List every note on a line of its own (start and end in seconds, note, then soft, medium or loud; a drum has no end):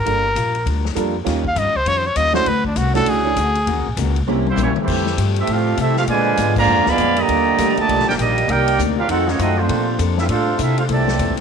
0.00 0.68 A#4 loud
0.05 0.35 G1 medium
0.05 0.22 G3 soft
0.05 0.25 G3 medium
0.05 0.22 A#3 soft
0.05 0.22 D4 soft
0.05 0.26 D4 medium
0.05 0.22 F4 soft
0.05 0.26 F4 medium
0.05 0.23 A4 medium
0.05 0.26 A#4 medium
0.05 kick soft
0.05 ride medium
0.35 0.65 A#1 loud
0.35 0.55 G3 medium
0.35 0.56 D4 medium
0.35 0.56 F4 medium
0.35 0.56 A#4 medium
0.35 kick soft
0.35 hi-hat pedal medium
0.35 ride medium
0.55 ride soft
0.66 0.95 D2 medium
0.66 0.86 G3 medium
0.66 0.86 D4 medium
0.66 0.86 F4 medium
0.66 0.86 A#4 medium
0.66 kick soft
0.66 ride medium
0.85 snare soft
0.95 1.25 F2 medium
0.95 1.12 G3 medium
0.95 1.16 G3 medium
0.95 1.13 A#3 medium
0.95 1.13 D4 medium
0.95 1.16 D4 medium
0.95 1.13 F4 medium
0.95 1.16 F4 medium
0.95 1.13 A4 medium
0.95 1.17 A#4 medium
0.95 kick soft
0.95 hi-hat pedal medium
0.95 ride medium
1.24 1.55 D#2 medium
1.24 1.46 D#3 soft
1.24 1.46 G3 medium
1.24 1.42 A#3 medium
1.24 1.42 C#4 medium
1.24 1.46 C#4 medium
1.24 1.43 D#4 medium
1.24 1.42 F4 medium
1.24 1.46 F4 medium
1.24 1.43 G4 medium
1.24 kick soft
1.24 snare soft
1.24 ride medium
1.45 1.60 F5 medium
1.45 kick medium
1.55 1.66 G2 loud
1.55 1.75 D#3 medium
1.55 1.76 G3 medium
1.55 1.76 C#4 medium
1.55 1.76 F4 medium
1.55 1.78 D#5 loud
1.55 kick soft
1.55 hi-hat pedal medium
1.55 ride medium
1.64 1.74 D#2 medium
1.75 1.85 C#2 medium
1.75 1.90 C5 medium
1.85 2.15 F2 medium
1.85 2.06 D#3 medium
1.85 2.06 G3 medium
1.85 2.06 C#4 medium
1.85 2.07 F4 medium
1.85 1.99 C#5 loud
1.85 kick soft
1.85 ride medium
1.98 2.08 C5 medium
2.07 2.18 C#5 medium
2.16 2.45 D#2 medium
2.16 2.36 D#3 medium
2.16 2.36 G3 medium
2.16 2.36 C#4 medium
2.16 2.36 F4 medium
2.16 2.34 D#5 loud
2.16 kick soft
2.16 hi-hat pedal medium
2.16 ride medium
2.32 2.44 A3 medium
2.32 2.45 C#4 medium
2.32 2.45 D4 medium
2.32 2.45 E4 medium
2.32 2.45 F#4 medium
2.32 2.49 C5 loud
2.32 snare medium
2.46 2.75 D2 loud
2.46 2.66 D3 medium
2.46 2.66 A3 medium
2.46 2.67 C#4 medium
2.46 2.67 F#4 medium
2.46 2.66 B4 medium
2.46 kick soft
2.46 ride medium
2.65 2.79 D4 medium
2.65 kick soft
2.76 3.05 C2 loud
2.76 2.96 D3 medium
2.76 2.97 A3 medium
2.76 2.97 C#4 medium
2.76 2.95 F#4 medium
2.76 2.97 F#4 medium
2.76 kick soft
2.76 hi-hat pedal soft
2.76 ride medium
2.93 3.22 A3 medium
2.93 3.23 C#4 medium
2.93 3.23 D4 medium
2.93 3.23 E4 medium
2.93 3.24 F#4 medium
2.93 3.11 A4 loud
2.93 snare medium
2.93 ride medium
3.06 3.27 D3 medium
3.06 3.27 A3 medium
3.06 3.27 C#4 medium
3.06 3.27 F#4 medium
3.06 3.98 G#4 loud
3.06 kick soft
3.06 ride medium
3.23 3.35 A3 medium
3.23 3.35 C#4 medium
3.23 3.35 D4 medium
3.23 3.36 E4 medium
3.23 3.36 G#4 medium
3.36 3.66 D2 loud
3.36 3.57 D3 medium
3.36 3.57 A3 medium
3.36 3.57 C#4 medium
3.36 3.57 F#4 medium
3.36 kick soft
3.36 hi-hat pedal medium
3.36 ride medium
3.55 ride medium
3.66 3.77 D#2 loud
3.66 3.87 D#3 medium
3.66 3.87 A#3 medium
3.66 3.87 C#4 medium
3.66 3.87 F#4 medium
3.66 kick soft
3.66 ride medium
3.77 3.86 C#2 medium
3.86 3.96 A#1 medium
3.97 4.26 C#2 loud
3.97 4.17 D#3 medium
3.97 4.17 A#3 medium
3.97 4.18 C#4 medium
3.97 4.18 F#4 medium
3.97 kick soft
3.97 hi-hat pedal medium
3.97 ride medium
4.16 ride medium
4.27 4.55 C2 medium
4.27 4.47 C3 medium
4.27 4.44 A#3 medium
4.27 4.48 A#3 medium
4.27 4.44 C4 medium
4.27 4.44 C#4 medium
4.27 4.48 C#4 medium
4.27 4.45 E4 medium
4.27 4.48 E4 medium
4.27 4.45 G4 medium
4.27 high tom medium
4.47 4.58 E3 medium
4.47 4.59 G3 medium
4.47 4.59 A#3 medium
4.47 4.58 C4 medium
4.47 4.59 E4 medium
4.47 4.59 C5 medium
4.47 high tom medium
4.51 4.59 G4 medium
4.56 4.74 A#1 loud
4.56 4.77 C3 medium
4.56 4.78 A#3 medium
4.56 4.78 C#4 medium
4.56 4.78 E4 medium
4.56 hi-hat pedal medium
4.56 high tom medium
4.61 4.69 G3 medium
4.61 4.69 A#3 medium
4.61 4.70 A#3 medium
4.61 4.69 C#4 medium
4.61 4.70 E4 medium
4.61 4.69 G4 medium
4.61 4.70 C#5 medium
4.75 muted upright bass stroke soft
4.75 mid tom medium
4.80 5.17 E3 medium
4.80 5.17 A3 medium
4.80 5.18 A3 medium
4.80 5.17 C4 medium
4.80 5.18 E4 medium
4.80 5.18 G4 medium
4.80 5.18 C5 medium
4.87 5.17 F2 loud
4.87 6.07 C3 medium
4.87 5.07 F3 medium
4.87 6.07 G3 medium
4.87 6.07 A3 medium
4.87 5.08 A3 medium
4.87 5.08 E4 medium
4.87 6.07 G4 medium
4.87 5.09 G4 medium
4.87 kick medium
4.87 crash medium
5.06 snare medium
5.17 5.47 G2 loud
5.17 5.38 F3 medium
5.17 5.38 A3 medium
5.17 5.38 E4 medium
5.17 5.38 G4 medium
5.17 kick soft
5.17 hi-hat pedal medium
5.17 ride medium
5.36 5.49 A3 medium
5.36 5.49 C4 medium
5.36 5.49 E4 medium
5.36 5.49 G4 medium
5.36 ride medium
5.41 5.50 A4 medium
5.41 5.49 E5 medium
5.47 5.77 A2 medium
5.47 5.68 F3 medium
5.47 5.68 A3 medium
5.47 5.68 E4 medium
5.47 5.68 G4 medium
5.47 kick soft
5.47 ride medium
5.52 5.80 A3 loud
5.52 5.80 C4 medium
5.52 5.79 C4 medium
5.52 5.80 F4 medium
5.52 5.80 G4 medium
5.52 5.79 A4 medium
5.52 5.80 F5 loud
5.77 6.07 C3 medium
5.77 5.97 F3 medium
5.77 5.97 A3 medium
5.77 5.97 C4 medium
5.77 5.97 E4 medium
5.77 5.98 G4 medium
5.77 5.97 G4 medium
5.77 5.97 A4 medium
5.77 5.96 E5 medium
5.77 kick soft
5.77 hi-hat pedal medium
5.77 ride medium
5.81 5.97 C4 medium
5.81 5.97 E4 loud
5.96 6.04 A3 medium
5.96 6.03 C4 medium
5.96 6.04 C4 medium
5.96 6.03 F4 medium
5.96 6.03 G4 medium
5.96 6.04 A4 medium
5.96 6.03 F5 loud
5.96 snare soft
6.06 6.27 A#2 medium
6.06 7.27 A#2 medium
6.06 6.37 A#2 medium
6.06 6.54 D3 loud
6.06 8.45 F3 medium
6.06 6.54 F3 loud
6.06 7.26 G#3 medium
6.06 6.28 G#3 medium
6.06 6.54 G#3 loud
6.06 6.28 B3 medium
6.06 7.27 D4 medium
6.06 6.28 D4 medium
6.06 6.53 F4 loud
6.06 6.54 B4 medium
6.06 6.54 D5 loud
6.06 6.54 G#5 loud
6.06 kick soft
6.06 ride medium
6.37 6.66 G#2 loud
6.37 6.58 A#2 medium
6.37 6.58 G#3 medium
6.37 6.58 B3 medium
6.37 6.58 D4 medium
6.37 kick soft
6.37 hi-hat pedal medium
6.37 ride medium
6.56 6.85 D3 loud
6.56 6.85 F3 loud
6.56 6.85 A#3 loud
6.56 6.85 G#4 medium
6.56 6.85 D5 loud
6.56 6.85 F5 loud
6.56 6.85 A#5 loud
6.56 kick medium
6.56 crash medium
6.66 6.77 F#2 medium
6.66 6.88 A#2 medium
6.66 6.88 G#3 medium
6.66 6.89 B3 medium
6.66 6.89 D4 medium
6.77 6.86 F2 medium
6.86 6.97 D2 medium
6.86 7.18 F3 medium
6.86 7.18 G#3 medium
6.86 7.17 B3 medium
6.86 7.17 G#4 loud
6.86 7.17 D5 loud
6.86 7.18 F5 loud
6.86 7.18 B5 loud
6.86 snare medium
6.98 7.27 F2 medium
6.98 7.18 A#2 medium
6.98 7.18 G#3 medium
6.98 7.18 B3 medium
6.98 7.18 D4 medium
6.98 kick soft
6.98 hi-hat pedal medium
6.98 ride medium
7.16 7.77 D3 loud
7.16 7.77 G3 medium
7.16 7.77 A#3 loud
7.16 7.77 G4 loud
7.16 7.78 D#5 loud
7.16 7.79 A#5 loud
7.16 ride medium
7.21 7.77 D5 loud
7.28 7.58 D#2 loud
7.28 8.47 A#2 medium
7.28 7.48 D#3 medium
7.28 8.47 G3 medium
7.28 7.48 G3 medium
7.28 7.48 A#3 medium
7.28 7.49 D4 medium
7.28 8.48 G4 medium
7.28 kick soft
7.28 ride medium
7.58 7.75 D2 loud
7.58 7.78 D#3 medium
7.58 7.78 G3 medium
7.58 7.78 A#3 medium
7.58 7.79 D4 medium
7.58 kick soft
7.58 hi-hat pedal medium
7.58 ride medium
7.77 8.08 A#2 loud
7.77 8.08 D3 loud
7.77 8.08 A3 loud
7.77 8.08 G4 loud
7.77 8.07 D5 loud
7.77 8.08 D#5 medium
7.77 8.08 A5 loud
7.77 muted upright bass stroke soft
7.77 ride medium
7.88 7.99 C2 medium
7.88 8.08 D#3 soft
7.88 8.08 G3 medium
7.88 8.08 A#3 medium
7.88 8.09 D4 medium
7.88 kick soft
7.88 ride medium
7.99 8.09 A#1 medium
7.99 snare soft
8.07 8.18 G1 medium
8.07 8.13 A#3 medium
8.07 8.13 D4 medium
8.07 8.12 D#4 medium
8.07 8.13 G4 medium
8.07 8.13 A#4 loud
8.07 8.13 D5 loud
8.07 8.13 G5 loud
8.07 snare medium
8.17 8.47 A#1 loud
8.17 8.38 D#3 medium
8.17 8.38 G3 medium
8.17 8.47 G3 medium
8.17 8.38 A#3 medium
8.17 8.47 A#3 medium
8.17 8.38 D4 medium
8.17 8.47 D#4 medium
8.17 8.47 G4 medium
8.17 8.47 D5 medium
8.17 8.47 D#5 loud
8.17 kick soft
8.17 hi-hat pedal medium
8.17 ride medium
8.38 ride medium
8.47 8.77 C2 medium
8.47 8.68 C3 medium
8.47 9.08 C3 medium
8.47 8.68 D#3 medium
8.47 9.07 A#3 medium
8.47 8.68 A#3 medium
8.47 8.80 A#3 medium
8.47 8.68 D4 medium
8.47 9.07 D#4 medium
8.47 8.79 D#4 medium
8.47 8.80 D#4 medium
8.47 8.79 A#4 loud
8.47 9.07 D5 medium
8.47 8.79 D5 medium
8.47 8.80 G5 loud
8.47 kick soft
8.47 ride medium
8.51 8.80 G4 medium
8.68 ride medium
8.78 9.08 D2 loud
8.78 8.98 C3 medium
8.78 8.98 D#3 medium
8.78 8.99 A#3 medium
8.78 8.99 D4 medium
8.78 kick soft
8.78 hi-hat pedal medium
8.97 9.09 D4 medium
8.97 9.08 F4 medium
8.97 9.09 G4 medium
8.97 9.09 A#4 medium
8.97 9.09 F5 loud
9.06 9.38 F2 medium
9.06 9.67 D#3 medium
9.06 9.28 F3 medium
9.06 9.67 F#3 medium
9.06 9.28 A3 medium
9.06 11.41 C4 medium
9.06 9.26 C4 medium
9.06 9.26 D#4 medium
9.06 9.29 D#4 medium
9.06 9.67 F4 medium
9.06 9.27 F#4 medium
9.06 kick soft
9.06 ride medium
9.10 9.27 D#4 medium
9.10 9.29 F#4 medium
9.10 9.27 A4 medium
9.10 9.27 C5 medium
9.10 9.27 F#5 medium
9.28 9.40 A#3 medium
9.28 9.39 C#4 medium
9.28 9.40 D#4 medium
9.28 9.40 F#4 medium
9.28 9.40 C#5 loud
9.28 snare soft
9.39 9.68 F#2 loud
9.39 9.58 F3 medium
9.39 9.59 A3 medium
9.39 9.56 A3 medium
9.39 9.56 C4 medium
9.39 9.58 C4 medium
9.39 9.59 D#4 medium
9.39 9.56 D#4 medium
9.39 9.59 F#4 medium
9.39 9.58 F#4 medium
9.39 9.58 A4 medium
9.39 9.58 D#5 medium
9.39 kick soft
9.39 hi-hat pedal medium
9.39 ride medium
9.57 9.99 F3 medium
9.57 9.99 A3 medium
9.57 10.00 A3 medium
9.57 9.99 C4 medium
9.57 10.00 D4 medium
9.57 10.00 F4 medium
9.57 10.00 C5 medium
9.67 9.98 A#2 medium
9.67 10.87 C3 medium
9.67 9.88 A#3 medium
9.67 10.87 D4 medium
9.67 9.89 D4 medium
9.67 9.89 A4 medium
9.67 9.89 C5 medium
9.67 kick soft
9.67 ride medium
9.99 10.28 F2 loud
9.99 10.18 A#3 medium
9.99 10.18 D4 medium
9.99 10.19 A4 medium
9.99 10.19 C5 medium
9.99 kick soft
9.99 hi-hat pedal medium
9.99 ride medium
10.18 10.24 C4 medium
10.18 10.23 E4 medium
10.18 10.24 F4 medium
10.18 10.24 A4 medium
10.18 10.24 E5 loud
10.18 snare soft
10.28 10.58 A2 medium
10.28 10.57 A3 medium
10.28 10.48 A#3 soft
10.28 10.48 D4 medium
10.28 10.57 D4 medium
10.28 10.57 F4 medium
10.28 10.49 A4 medium
10.28 10.58 A4 medium
10.28 10.49 C5 medium
10.28 10.58 C5 medium
10.28 10.57 F5 medium
10.28 kick soft
10.28 ride medium
10.57 10.88 C3 loud
10.57 10.78 A#3 medium
10.57 10.78 D4 medium
10.57 10.77 E4 medium
10.57 10.78 A4 medium
10.57 10.79 C5 medium
10.57 kick soft
10.57 hi-hat pedal medium
10.57 ride medium
10.61 10.79 C4 medium
10.61 10.79 F4 medium
10.61 10.79 A4 medium
10.61 10.79 E5 medium
10.77 10.82 A3 medium
10.77 10.82 D4 medium
10.77 10.85 D4 medium
10.77 10.82 F4 medium
10.77 10.85 A4 medium
10.77 10.84 C5 medium
10.77 10.84 F5 medium
10.77 ride medium
10.88 11.18 C2 medium
10.88 11.34 A#2 medium
10.88 11.08 C3 medium
10.88 11.41 D3 medium
10.88 11.34 E3 medium
10.88 11.35 A3 medium
10.88 11.08 A#3 soft
10.88 11.41 E4 medium
10.88 11.09 E4 medium
10.88 11.09 A4 medium
10.88 kick soft
10.88 ride medium
10.92 11.36 G4 medium
10.92 11.36 D5 medium
10.92 11.36 E5 medium
10.92 11.36 A5 medium
11.08 snare medium
11.19 11.30 E2 loud
11.19 11.39 C3 medium
11.19 11.39 A#3 medium
11.19 11.39 E4 medium
11.19 11.39 A4 medium
11.19 kick soft
11.19 hi-hat pedal medium
11.19 ride medium
11.29 11.38 C2 medium
11.37 ride medium